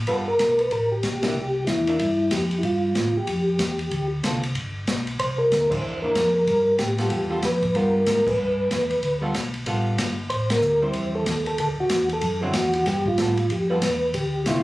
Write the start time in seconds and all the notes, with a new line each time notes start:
0.07 G1 G3 B3 F4 A4 B4, kick, ride
0.28 A#4
0.39 B1, kick, snare, hi-hat pedal, ride
0.59 B4, ride
0.71 A1 A#4, kick, ride
0.92 G4
1.03 B1, kick, snare, hi-hat pedal, ride
1.22 A#3 D4 E4 G4, snare, ride
1.34 C2
1.67 E2 E4, kick, snare, hi-hat pedal, ride
1.87 A#3 D4 E4, ride
1.99 G2 E4, kick, ride
2.31 F2 G4, kick, snare, hi-hat pedal, ride
2.51 ride
2.59 E4
2.63 G2 F4, kick, ride
2.95 A2, kick, snare, hi-hat pedal, ride
3.13 A2 G4
3.27 F2, kick, ride
3.59 E2, kick, snare, hi-hat pedal, ride
3.79 ride
3.91 D2, kick, ride
4.23 C2 D3 C4 F4 A4, kick, snare, hi-hat pedal, ride
4.43 ride
4.55 G1, kick, ride
4.87 B1, kick, snare, hi-hat pedal, ride
5.07 ride
5.19 C2 C5, kick, ride
5.38 A#4
5.51 D2, kick, snare, hi-hat pedal, ride
5.61 A#4
5.70 A#3 D4 E4 C5, kick, crash
5.82 E2
6.02 E2 A#3 D4 E4 A#4
6.15 F2, kick, snare, hi-hat pedal, ride
6.34 A#4
6.47 G2, kick, ride
6.79 A2 G4, kick, snare, hi-hat pedal, ride
6.98 G3 B3 F4 A4, snare, ride
7.10 E2 G4, kick, ride
7.29 G3 B3 F4 A4
7.42 F2 B4, kick, snare, hi-hat pedal, ride
7.63 kick, ride
7.74 G2 G3 B3 F4 A#4, kick, ride
8.06 G#2, kick, snare, hi-hat pedal, ride
8.26 G#2 B4, kick, crash
8.37 G2
8.70 E2, kick, snare, hi-hat pedal, ride
8.90 E2, ride
9.02 D2, kick, ride
9.21 G3 B3 F4 A4
9.34 B1, kick, snare, hi-hat pedal, ride
9.54 ride
9.66 A1 G3 B3 F4 A4, kick, ride
9.98 G1, kick, snare, hi-hat pedal, ride
10.30 A1 C5, kick, ride
10.50 A#4, snare, ride
10.60 D2, hi-hat pedal
10.82 G3 C4 E4 C5
10.93 E2, kick, ride
11.15 A4
11.26 D#2, kick, snare, hi-hat pedal, ride
11.46 A4, ride
11.58 D2 A4, kick, ride
11.77 D2 F#4
11.89 E2, kick, snare, hi-hat pedal, ride
12.09 A4, ride
12.21 F#2, kick, ride
12.42 D3 F#3 C4 E4
12.53 E2 F#4, kick, snare, hi-hat pedal, ride
12.73 F#4, ride
12.86 G2, kick, snare, ride
13.06 F4, kick
13.18 A2 G3 B3 F4 A4, kick, snare, hi-hat pedal, ride
13.37 ride
13.49 F2 G4, kick, ride
13.70 G3 B3 F4 A4 B4
13.82 E2, kick, snare, hi-hat pedal, ride
14.14 D2 G4, kick, ride
14.46 C2 D3 A3 C4 E4 F4, kick, snare, hi-hat pedal, ride